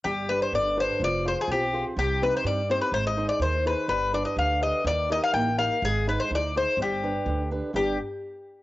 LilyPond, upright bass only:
\new Staff \with { instrumentName = "Upright bass" } { \clef bass \time 2/4 \tempo 4 = 125 g,,4 g,,4 | f,,4 b,,4 | c,4 g,4 | aes,,4 ees,4 |
g,,4 d,4 | ees,4 a,,4 | aes,,4 d,4 | g,,4 d,4 |
g,,8 r4. | }